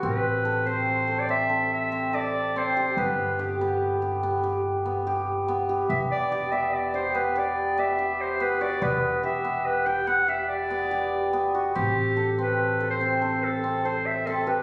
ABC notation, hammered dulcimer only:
X:1
M:7/4
L:1/8
Q:1/4=143
K:Em
V:1 name="Hammered dulcimer"
C2 A C2 A C A2 C A2 C G | B,2 G B,2 G B, G2 B, G2 B, G | B,2 G B,2 G B, G2 B, G2 B, F | B,2 G B,2 G B, G2 B, G2 B, F |
C2 A C2 A C A2 C A2 C G |]